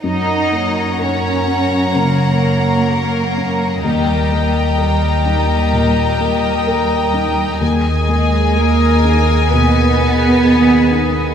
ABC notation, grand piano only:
X:1
M:4/4
L:1/8
Q:1/4=63
K:F#mix
V:1 name="Grand piano"
F,, A, A C C, A, A C | D,, A, A D A,, A, A D | D,, A, G D B,, B, G D |]